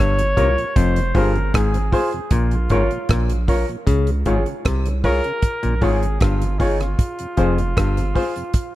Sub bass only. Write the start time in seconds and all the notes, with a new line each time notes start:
0.00 G1
0.38 C2
0.77 F1
1.16 G1
1.55 G#1
2.32 A#1
2.71 G#1
3.10 A#1
3.88 C#2
4.27 G#1
4.66 C2
5.65 A#1
5.82 G#1
6.22 G1
7.38 F1
7.78 G1